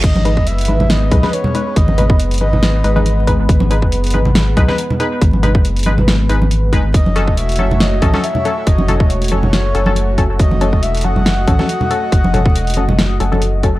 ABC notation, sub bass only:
X:1
M:4/4
L:1/16
Q:"Swing 16ths" 1/4=139
K:G#phr
V:1 name="Sub bass" clef=bass
G,,,3 F,,,3 G,,,4 B,,, z4 z | G,,,3 F,,,3 G,,,4 G,,,6 | G,,,3 F,,,3 G,,,4 B,,, z4 z | G,,,3 F,,,3 G,,,4 G,,,4 F,,, G,,, |
F,,,3 E,,,3 F,,,4 A,,, z4 z | F,,,3 E,,,3 F,,,4 F,,,6 | F,,,3 E,,,3 F,,,4 A,,, z4 z | F,,,3 E,,,3 F,,,4 F,,,6 |]